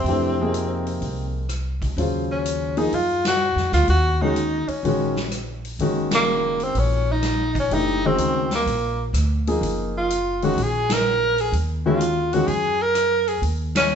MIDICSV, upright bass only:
0, 0, Header, 1, 3, 480
1, 0, Start_track
1, 0, Tempo, 477327
1, 65, Time_signature, 4, 2, 24, 8
1, 14028, End_track
2, 0, Start_track
2, 0, Title_t, "Upright bass"
2, 0, Program_c, 0, 32
2, 42, Note_on_c, 0, 41, 82
2, 975, Note_off_c, 0, 41, 0
2, 1017, Note_on_c, 0, 36, 67
2, 1944, Note_off_c, 0, 36, 0
2, 1979, Note_on_c, 0, 39, 81
2, 2905, Note_off_c, 0, 39, 0
2, 2943, Note_on_c, 0, 42, 75
2, 3547, Note_off_c, 0, 42, 0
2, 3579, Note_on_c, 0, 41, 57
2, 3733, Note_off_c, 0, 41, 0
2, 3750, Note_on_c, 0, 38, 69
2, 3899, Note_off_c, 0, 38, 0
2, 3906, Note_on_c, 0, 39, 81
2, 4675, Note_off_c, 0, 39, 0
2, 4858, Note_on_c, 0, 34, 76
2, 5785, Note_off_c, 0, 34, 0
2, 5823, Note_on_c, 0, 30, 79
2, 6747, Note_off_c, 0, 30, 0
2, 6784, Note_on_c, 0, 34, 80
2, 7707, Note_off_c, 0, 34, 0
2, 7751, Note_on_c, 0, 30, 80
2, 8197, Note_off_c, 0, 30, 0
2, 8226, Note_on_c, 0, 38, 68
2, 8674, Note_off_c, 0, 38, 0
2, 8707, Note_on_c, 0, 34, 79
2, 9155, Note_off_c, 0, 34, 0
2, 9183, Note_on_c, 0, 38, 74
2, 9632, Note_off_c, 0, 38, 0
2, 9664, Note_on_c, 0, 30, 82
2, 10585, Note_off_c, 0, 30, 0
2, 10625, Note_on_c, 0, 34, 81
2, 11546, Note_off_c, 0, 34, 0
2, 11586, Note_on_c, 0, 39, 78
2, 12506, Note_off_c, 0, 39, 0
2, 12549, Note_on_c, 0, 42, 80
2, 13467, Note_off_c, 0, 42, 0
2, 13495, Note_on_c, 0, 39, 85
2, 14028, Note_off_c, 0, 39, 0
2, 14028, End_track
3, 0, Start_track
3, 0, Title_t, "Muted upright bass strokes"
3, 4707, Note_on_c, 9, 29, 38
3, 4807, Note_off_c, 9, 29, 0
3, 14028, End_track
0, 0, End_of_file